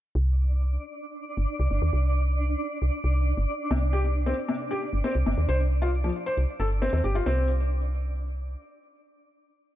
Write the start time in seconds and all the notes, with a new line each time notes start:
0.15 C2 D4 D5
1.37 G1
1.60 C2
1.71 G1
1.82 D#2
1.93 C2
2.82 C2
3.04 C2
3.37 G1
3.71 C2 C3
3.93 G4
4.26 C4
4.49 C3
4.71 G4
4.93 G1
5.04 C4
5.15 C2
5.26 G1 C3
5.37 D#2
5.49 C2 C5
5.82 F4
6.04 F3
6.26 C5
6.37 C2
6.60 G1 A4
6.82 C4
6.93 D#2 C4
7.04 G1 G4
7.15 F4
7.26 C2 C4